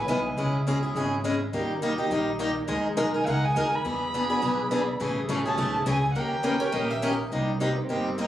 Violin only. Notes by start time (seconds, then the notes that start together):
Already playing: G#5
3.16 G#5
3.26 E5 F#5
3.45 G#5
3.74 B5
5.48 A5
5.90 G#5
6.13 F#5
6.19 G5
7.71 B3
7.80 C4
8.21 D#4